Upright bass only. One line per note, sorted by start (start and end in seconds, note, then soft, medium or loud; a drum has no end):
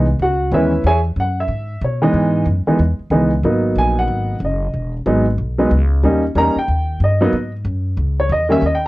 0.00 0.18 C2 medium
0.20 0.51 C#2 medium
0.52 0.83 D#2 medium
0.84 1.15 E2 medium
1.16 1.48 F#2 medium
1.48 1.80 G#2 medium
1.82 2.13 B2 medium
2.14 2.45 G#2 medium
2.46 2.65 F#2 medium
2.67 muted upright bass stroke soft
2.79 2.98 E2 medium
2.99 muted upright bass stroke soft
3.10 3.42 C#2 medium
3.43 3.75 G#1 medium
3.75 4.07 A#1 medium
4.08 4.39 G#1 medium
4.40 4.72 F#1 medium
4.73 5.05 E1 medium
5.06 5.37 G#1 medium
5.38 5.69 B1 medium
5.71 6.02 C#2 medium
6.03 6.34 D#2 medium
6.35 6.54 E2 medium
6.56 muted upright bass stroke soft
6.68 6.99 D#2 medium
7.00 7.31 G2 medium
7.33 7.64 G#2 medium
7.65 7.96 F#2 medium
7.97 8.29 C#2 medium
8.30 8.61 E2 medium
8.62 8.88 D#2 medium